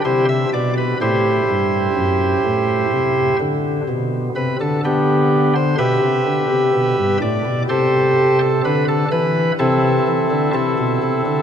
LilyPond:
<<
  \new Staff \with { instrumentName = "Pipe organ" } { \time 4/4 \key g \major \tempo 4 = 63 <e' g' c''>16 e''16 d''16 b'16 <e' g' c''>2~ <e' g' c''>8 r8 | r8 b'16 a'16 <b d' g'>8. c''16 <g' b' e''>4. d''8 | <g' a' c''>8. a'16 b'16 a'16 b'8 <c' e' a'>4 <c' e' a'>4 | }
  \new Staff \with { instrumentName = "Pipe organ" } { \clef bass \time 4/4 \key g \major c8 b,8 a,8 g,8 fis,8 a,8 c8 d8 | b,8 c16 d4~ d16 b,16 c16 d16 c16 b,16 g,16 a,16 b,16 | c4 d8 e8 c8 e16 d16 c16 b,16 c16 d16 | }
>>